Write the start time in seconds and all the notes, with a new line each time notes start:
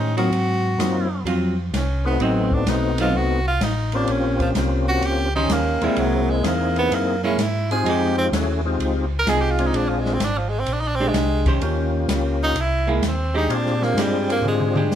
Already playing: A2 D#3 C#4 D#4 G4 C5
0.17 F#3 A#3 C4 D#4 F4 F#4, ride
0.30 G#2, ride
0.78 F#2 F#3 A#3 C4 D#4 F4, snare, hi-hat pedal, ride
1.25 F2 F#3 C4 F4, ride
1.72 C2, snare, hi-hat pedal, ride
1.76 C#4
2.05 A3 B3 C4 D#4 F#4
2.19 A1 F#3 C4 D#4, ride
2.52 D4, kick
2.65 B1 A3 B3 C4 D#4 F#4, snare, hi-hat pedal, ride
2.70 D#4
2.98 F#3 C4 D#4 F4, ride
3.12 C2 F#4
3.47 F4
3.59 A1, snare, hi-hat pedal, ride
3.64 D#4
3.92 A#3 C4 C#4 D4 F4 G4, ride
4.07 A#1, ride
4.12 C#4
4.40 F3, kick, ride
4.53 C2 A#3 C4, snare, hi-hat pedal, ride
4.57 C#4 F4 G4
4.89 F#4
5.01 C#2, ride
5.05 G4
5.35 D#3 C#4 D#4 G4 C5
5.47 D#2, snare, hi-hat pedal, ride
5.53 A#3
5.81 D#2 G3 G#3 A#3 C4 E4 G#4, ride
5.96 C2 F#3, ride
6.30 G#3
6.42 E2 A#3 C4 D#4 E4 G#4, snare, hi-hat pedal, ride
6.46 A#3
6.76 B3, ride
6.91 F#2 A#3, ride
7.23 G#3 A#3 C#4 E4
7.38 G#2, snare, hi-hat pedal, ride
7.42 E4
7.71 G#3 C4 D#4 F4 G4 G#4, ride
7.84 F2 F3 C4 D#4 G#4, ride
7.89 G4
8.18 C4
8.31 D#2 A3 C#4 E4 F#4 G#4, snare, hi-hat pedal, ride
8.65 G#3 C4 D#4 F4 G4
8.78 C#2, ride
9.19 A#4
9.25 C2 F3 C4 D#4 G#4, snare, hi-hat pedal, ride
9.29 G#4
9.41 G4
9.51 F4
9.59 G#3 C4 D4 F4 G#4, ride
9.66 D#4
9.72 A#1 D4, ride
9.89 F3
10.00 G#3
10.05 snare
10.13 C4
10.19 G#1, snare, hi-hat pedal, ride
10.25 D4
10.37 F3
10.49 G#3
10.59 C4
10.66 A#1, ride
10.73 D4
10.80 D#4
10.88 D4
10.95 C4
11.00 G#3 D4 G4
11.08 G#3
11.13 C2, snare, hi-hat pedal, ride
11.46 D#3 C#4 G4 C5, kick, ride
11.60 D#2 A#3 C#4 F4 G4, ride
12.07 C#2, snare, hi-hat pedal, ride
12.44 D#4
12.55 C2, ride
12.61 E4
12.87 G#3 A#3 E4
13.01 D#2, snare, hi-hat pedal, ride
13.08 C4
13.34 G#3 D4 D#4 G4
13.48 A#2 C4 D4 F4 G4 G#4, ride
13.54 D4
13.66 snare
13.82 A#3, snare
13.95 G2 G#3, snare, hi-hat pedal, ride
13.99 G3 D4 G4
14.30 A#3, ride
14.41 G#2, mid tom
14.48 G#3
14.60 mid tom
14.75 D4 G4, mid tom
14.88 G2, snare, hi-hat pedal